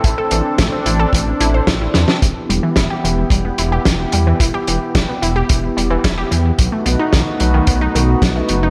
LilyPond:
<<
  \new Staff \with { instrumentName = "Analog synth pad" } { \time 4/4 \key e \minor \tempo 4 = 110 <c' d' a'>1 | <b e' g'>1~ | <b e' g'>1 | <a dis' fis' b'>1 | }
  \new Staff \with { instrumentName = "Synth arpeggio sound" } { \time 4/4 \key e \minor e'16 a'16 e16 r16 a16 c'16 e'16 a'16 e16 r16 e'16 c''16 e'16 e'16 e16 r16 | e16 r16 g16 e16 e'16 g'16 e16 r16 g16 b16 e'16 g'16 e16 r16 g16 e16 | e'16 g'16 e16 r16 g16 b16 e'16 g'16 e16 r16 g16 e16 e'16 g'16 e16 r16 | fis16 a16 b16 dis'16 dis16 r16 fis16 dis16 b16 dis'16 dis16 r16 fis16 a16 b16 dis'16 | }
  \new Staff \with { instrumentName = "Detuned saw bass" } { \clef bass \time 4/4 \key e \minor a,,8 a,,8 a,,8 a,,8 a,,8 a,,8 a,,8 e,8 | e,,8 e,,8 e,,8 e,,8 e,,8 e,,8 e,,8 e,8 | e,,8 e,,8 e,,8 e,,8 e,,8 e,,8 e,,8 e,8 | b,,8 b,,8 b,,8 b,,8 b,,8 b,,8 b,,8 fis,,8 | }
  \new DrumStaff \with { instrumentName = "Drums" } \drummode { \time 4/4 <hh bd>8 hh8 <hh bd sn>8 hh8 <hh bd>8 hh8 <hh bd sn>8 <hh sn>16 sn16 | <hh bd>8 hh8 <hh bd sn>8 hh8 <hh bd>8 hh8 <hh bd sn>8 hh8 | <hh bd>8 hh8 <hh bd sn>8 hh8 <hh bd>8 hh8 <hh bd sn>8 hh8 | <hh bd>8 hh8 <hh bd sn>8 hh8 <hh bd>8 hh8 <hh bd sn>8 hh8 | }
>>